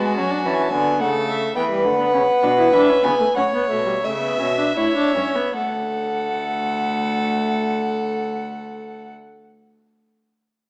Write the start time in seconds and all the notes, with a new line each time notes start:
Already playing: G#3 B3 F#4
0.06 G#5
0.13 C#4 A5
0.18 F#3
0.22 G#5
0.30 D4 A5
0.38 G#5
0.45 E3 C#4 A5
0.55 G#5
0.62 A5
0.71 D3 B3 G#5
1.00 C#3 A3 A4 F#5
1.29 E5
1.56 E3 B3 B4 G5
1.71 G3
1.85 D3 A3 F#5
1.99 B3
2.13 C#3 C#4
2.43 B2 D4
2.58 E4
2.73 E3 D4 E5
2.89 C#4
3.04 C#3 B3 G#5
3.20 A3
3.36 A2 C#4 C#5 F#5
3.54 B3
3.69 B2 A3 E5
3.86 G3
4.04 C#3 A3 E5
4.21 B3
4.39 B2 C#4
4.58 D4
4.76 A2 E4 C#5
4.96 D4
5.15 G2 C#4
5.36 B3
5.56 D2 A3 A4 F#5